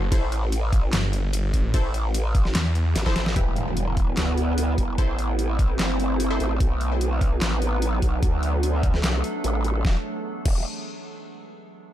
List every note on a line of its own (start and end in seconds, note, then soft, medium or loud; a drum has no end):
0.00 0.10 F#1 loud
0.12 0.91 A1 loud
0.12 0.31 E4 medium
0.12 0.31 A4 medium
0.12 0.31 C5 medium
0.12 kick loud
0.12 closed hi-hat medium
0.12 ride medium
0.32 closed hi-hat medium
0.52 closed hi-hat medium
0.52 ride soft
0.73 kick loud
0.73 closed hi-hat medium
0.93 1.52 G1 loud
0.93 snare loud
0.93 clap medium
0.93 closed hi-hat medium
0.93 ride medium
1.13 closed hi-hat medium
1.33 closed hi-hat medium
1.33 ride medium
1.54 1.72 A1 loud
1.54 kick medium
1.54 closed hi-hat medium
1.74 2.53 A1 medium
1.74 1.93 E4 medium
1.74 1.93 A4 medium
1.74 1.93 C5 medium
1.74 kick loud
1.74 closed hi-hat medium
1.74 ride medium
1.94 closed hi-hat medium
2.14 closed hi-hat medium
2.14 ride soft
2.35 kick loud
2.35 closed hi-hat medium
2.45 snare soft
2.55 2.94 E2 medium
2.55 snare loud
2.55 clap medium
2.55 closed hi-hat medium
2.55 ride medium
2.75 closed hi-hat medium
2.96 3.35 A1 loud
2.96 snare medium
2.96 closed hi-hat medium
2.96 ride medium
3.06 3.18 E4 loud
3.06 3.18 A4 loud
3.06 3.18 C5 loud
3.06 kick medium
3.06 snare medium
3.16 snare medium
3.16 closed hi-hat medium
3.26 snare medium
3.36 4.16 E1 medium
3.36 4.97 G3 medium
3.36 4.97 B3 medium
3.36 4.97 E4 medium
3.36 3.55 E4 medium
3.36 3.55 G4 medium
3.36 4.97 B4 medium
3.36 3.55 B4 medium
3.36 kick loud
3.36 closed hi-hat medium
3.36 impact medium
3.56 closed hi-hat medium
3.77 closed hi-hat medium
3.97 kick loud
3.97 closed hi-hat medium
4.17 4.76 D2 loud
4.17 snare loud
4.17 clap loud
4.17 closed hi-hat medium
4.38 closed hi-hat medium
4.58 closed hi-hat medium
4.78 4.97 E1 loud
4.78 kick medium
4.78 closed hi-hat medium
4.98 5.78 A1 medium
4.98 6.59 A3 medium
4.98 6.59 C4 medium
4.98 6.59 E4 medium
4.98 5.17 E4 medium
4.98 5.17 A4 medium
4.98 6.59 C5 medium
4.98 5.17 C5 medium
4.98 kick loud
4.98 closed hi-hat medium
5.19 closed hi-hat medium
5.39 closed hi-hat medium
5.59 kick loud
5.59 closed hi-hat medium
5.79 6.39 G1 loud
5.79 snare loud
5.79 clap medium
5.79 closed hi-hat medium
6.00 closed hi-hat medium
6.20 closed hi-hat medium
6.30 6.42 E4 loud
6.30 6.42 A4 loud
6.30 6.42 C5 loud
6.40 6.59 A1 loud
6.40 closed hi-hat medium
6.60 7.40 B1 medium
6.60 9.82 F#3 medium
6.60 8.21 B3 medium
6.60 8.21 D#4 medium
6.60 8.21 B4 medium
6.60 kick loud
6.60 closed hi-hat medium
6.81 closed hi-hat soft
7.01 closed hi-hat medium
7.21 kick loud
7.21 closed hi-hat medium
7.41 8.01 A1 loud
7.41 snare loud
7.41 clap medium
7.41 closed hi-hat medium
7.62 closed hi-hat medium
7.82 closed hi-hat medium
8.02 8.21 B1 loud
8.02 kick medium
8.02 closed hi-hat medium
8.22 9.02 D2 medium
8.22 9.83 A3 medium
8.22 9.83 D4 medium
8.22 9.83 A4 medium
8.22 kick loud
8.22 closed hi-hat medium
8.43 closed hi-hat soft
8.63 closed hi-hat medium
8.83 kick loud
8.83 closed hi-hat soft
8.94 snare soft
9.04 9.22 C2 loud
9.04 snare loud
9.04 clap medium
9.04 closed hi-hat medium
9.24 closed hi-hat medium
9.44 9.83 A1 loud
9.44 closed hi-hat medium
9.64 closed hi-hat medium
9.85 9.96 E1 medium
9.85 kick loud
9.85 snare medium
10.46 10.64 E1 medium
10.46 kick loud
10.46 crash medium